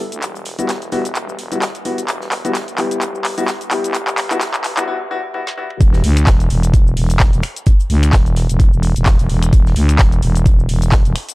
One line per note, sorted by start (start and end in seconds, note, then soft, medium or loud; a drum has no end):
0.12 0.21 D2 loud
0.12 closed hi-hat medium
0.12 shaker medium
0.22 0.57 E1 medium
0.22 clap medium
0.22 closed hi-hat medium
0.22 shaker soft
0.35 closed hi-hat soft
0.35 shaker soft
0.45 closed hi-hat medium
0.45 open hi-hat loud
0.58 0.91 E1 medium
0.58 0.68 G3 medium
0.58 0.68 B3 medium
0.58 0.68 E4 medium
0.58 0.68 F#4 loud
0.58 closed hi-hat soft
0.58 shaker medium
0.69 snare loud
0.69 clap medium
0.69 closed hi-hat medium
0.69 shaker soft
0.82 closed hi-hat soft
0.82 shaker soft
0.92 1.14 E1 medium
0.92 1.00 G3 medium
0.92 1.00 B3 medium
0.92 1.00 E4 medium
0.92 1.00 F#4 loud
0.92 snare soft
0.92 closed hi-hat medium
0.92 open hi-hat medium
1.05 closed hi-hat medium
1.05 shaker medium
1.15 1.37 E1 medium
1.15 clap medium
1.15 closed hi-hat medium
1.15 shaker medium
1.29 shaker soft
1.39 1.73 E1 medium
1.39 closed hi-hat medium
1.39 open hi-hat loud
1.52 1.58 G3 medium
1.52 1.58 B3 medium
1.52 1.58 E4 medium
1.52 1.58 F#4 medium
1.52 closed hi-hat medium
1.52 shaker medium
1.62 snare loud
1.62 clap medium
1.62 closed hi-hat medium
1.62 shaker soft
1.75 closed hi-hat soft
1.75 shaker soft
1.85 1.97 G3 medium
1.85 1.97 B3 medium
1.85 1.97 E4 medium
1.85 1.97 F#4 medium
1.85 closed hi-hat medium
1.85 open hi-hat loud
1.98 2.07 E1 loud
1.98 closed hi-hat medium
1.98 shaker medium
2.08 2.43 E1 loud
2.08 clap medium
2.08 closed hi-hat medium
2.08 shaker soft
2.21 snare soft
2.21 shaker soft
2.31 snare soft
2.31 clap medium
2.31 closed hi-hat medium
2.31 open hi-hat loud
2.45 2.66 E1 loud
2.45 2.51 G3 medium
2.45 2.51 B3 medium
2.45 2.51 E4 medium
2.45 2.51 F#4 medium
2.45 closed hi-hat soft
2.45 shaker medium
2.55 snare loud
2.55 clap medium
2.55 closed hi-hat medium
2.55 shaker soft
2.68 2.89 E1 loud
2.68 closed hi-hat soft
2.68 shaker soft
2.78 3.00 G3 medium
2.78 3.00 B3 medium
2.78 3.00 E4 medium
2.78 3.00 G4 medium
2.78 clap medium
2.78 closed hi-hat medium
2.78 open hi-hat medium
2.91 3.36 E1 loud
2.91 closed hi-hat medium
2.91 shaker medium
3.01 clap medium
3.01 closed hi-hat medium
3.01 shaker medium
3.15 shaker soft
3.25 clap medium
3.25 open hi-hat loud
3.25 open hi-hat medium
3.38 3.44 G3 medium
3.38 3.44 B3 medium
3.38 3.44 E4 medium
3.38 3.44 F#4 loud
3.38 closed hi-hat medium
3.38 shaker medium
3.48 snare loud
3.48 clap medium
3.48 closed hi-hat medium
3.48 shaker medium
3.61 closed hi-hat soft
3.61 shaker soft
3.71 3.93 G3 medium
3.71 3.93 B3 medium
3.71 3.93 E4 medium
3.71 3.93 G4 medium
3.71 clap medium
3.71 closed hi-hat medium
3.71 open hi-hat loud
3.84 3.93 D2 loud
3.84 closed hi-hat medium
3.84 shaker medium
3.94 4.29 E1 loud
3.94 clap medium
3.94 closed hi-hat medium
3.94 shaker medium
4.07 clap medium
4.07 closed hi-hat soft
4.07 shaker soft
4.18 clap loud
4.18 closed hi-hat medium
4.18 open hi-hat loud
4.31 4.63 E1 loud
4.31 4.37 G3 loud
4.31 4.37 B3 medium
4.31 4.37 E4 medium
4.31 4.37 F#4 loud
4.31 clap medium
4.31 closed hi-hat soft
4.31 shaker medium
4.41 snare loud
4.41 clap medium
4.41 closed hi-hat medium
4.41 shaker medium
4.54 clap medium
4.54 closed hi-hat soft
4.54 shaker soft
4.64 4.86 E1 loud
4.64 snare soft
4.64 clap loud
4.64 closed hi-hat medium
4.64 open hi-hat loud
4.77 4.83 G3 loud
4.77 4.83 B3 medium
4.77 4.83 E4 medium
4.77 4.83 F#4 loud
4.77 clap medium
4.77 closed hi-hat medium
4.77 shaker medium
4.88 4.95 G3 loud
4.88 4.95 B3 loud
4.88 4.95 E4 medium
4.88 4.95 F#4 loud
5.11 5.18 G3 loud
5.11 5.18 B3 medium
5.11 5.18 E4 medium
5.11 5.18 F#4 loud
5.34 5.42 G3 loud
5.34 5.42 B3 medium
5.34 5.42 E4 medium
5.34 5.42 F#4 loud
5.34 high tom medium
5.47 snare medium
5.57 5.65 G3 loud
5.57 5.65 B3 loud
5.57 5.65 E4 medium
5.57 5.65 F#4 loud
5.70 mid tom medium
5.81 6.02 E1 loud
5.81 kick loud
5.81 closed hi-hat medium
5.81 shaker medium
5.93 snare soft
5.93 shaker soft
6.04 6.25 D2 medium
6.04 snare soft
6.04 closed hi-hat medium
6.04 open hi-hat loud
6.17 finger snap medium
6.17 closed hi-hat medium
6.17 shaker medium
6.27 6.49 E1 medium
6.27 kick loud
6.27 snare loud
6.27 clap loud
6.27 closed hi-hat medium
6.27 shaker medium
6.40 closed hi-hat soft
6.40 shaker soft
6.50 6.95 E1 loud
6.50 closed hi-hat medium
6.50 open hi-hat medium
6.63 closed hi-hat medium
6.63 shaker medium
6.74 kick loud
6.74 closed hi-hat medium
6.74 shaker medium
6.87 shaker soft
6.97 7.31 E1 medium
6.97 open hi-hat loud
6.97 open hi-hat medium
7.10 closed hi-hat medium
7.10 shaker medium
7.20 kick loud
7.20 snare loud
7.20 clap loud
7.20 closed hi-hat medium
7.20 shaker medium
7.33 7.42 E1 loud
7.33 closed hi-hat soft
7.33 shaker soft
7.43 finger snap medium
7.43 closed hi-hat medium
7.43 open hi-hat medium
7.56 closed hi-hat medium
7.56 shaker medium
7.66 kick loud
7.66 closed hi-hat loud
7.66 closed hi-hat medium
7.66 shaker medium
7.80 closed hi-hat soft
7.80 shaker soft
7.90 8.12 D2 loud
7.90 closed hi-hat medium
7.90 open hi-hat loud
8.03 finger snap medium
8.03 closed hi-hat medium
8.03 closed hi-hat soft
8.03 shaker medium
8.13 8.47 E1 loud
8.13 kick loud
8.13 snare loud
8.13 clap loud
8.13 closed hi-hat medium
8.13 shaker medium
8.26 closed hi-hat soft
8.26 shaker soft
8.36 snare soft
8.36 closed hi-hat medium
8.36 open hi-hat loud
8.49 8.71 E1 loud
8.49 closed hi-hat medium
8.49 shaker medium
8.60 kick loud
8.60 closed hi-hat medium
8.60 shaker medium
8.73 8.94 E1 loud
8.73 shaker soft
8.83 closed hi-hat medium
8.83 open hi-hat loud
8.96 9.17 E1 loud
8.96 closed hi-hat medium
8.96 shaker medium
9.06 kick loud
9.06 snare loud
9.06 clap loud
9.06 closed hi-hat medium
9.06 shaker medium
9.19 9.28 E1 loud
9.19 closed hi-hat soft
9.19 shaker soft
9.29 9.51 E1 loud
9.29 closed hi-hat medium
9.29 open hi-hat loud
9.43 finger snap medium
9.43 closed hi-hat medium
9.43 shaker medium
9.53 9.74 E1 loud
9.53 kick loud
9.53 closed hi-hat medium
9.53 shaker medium
9.66 snare soft
9.66 shaker soft
9.76 9.98 D2 loud
9.76 snare soft
9.76 closed hi-hat medium
9.76 open hi-hat loud
9.89 finger snap medium
9.89 closed hi-hat soft
9.89 shaker medium
9.99 10.21 E1 loud
9.99 kick loud
9.99 snare loud
9.99 clap loud
9.99 closed hi-hat medium
9.99 shaker soft
10.12 closed hi-hat soft
10.12 shaker soft
10.22 10.67 E1 loud
10.22 closed hi-hat medium
10.22 open hi-hat medium
10.35 closed hi-hat medium
10.35 shaker medium
10.46 kick loud
10.46 closed hi-hat medium
10.46 shaker medium
10.59 shaker soft
10.69 11.03 E1 medium
10.69 open hi-hat loud
10.69 open hi-hat medium
10.82 closed hi-hat medium
10.82 shaker medium
10.91 kick loud
10.91 snare loud
10.91 clap loud
10.91 closed hi-hat loud
10.91 closed hi-hat medium
10.91 shaker medium
11.05 11.14 E1 loud
11.05 closed hi-hat soft
11.05 shaker soft
11.15 finger snap medium
11.15 closed hi-hat medium
11.15 open hi-hat loud
11.29 closed hi-hat medium
11.29 shaker medium